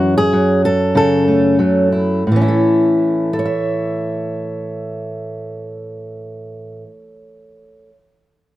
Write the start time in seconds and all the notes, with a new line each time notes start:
Already playing: F#2 E3 C#4 F#4
0.18 G#4
0.33 F#3
0.65 A4
0.95 C#3 A4
1.28 A3
1.59 F#3
1.92 E4
2.27 A2
2.32 E3
2.36 C#4
2.41 E4
2.48 A4
3.33 A4
3.39 C#5
3.46 E5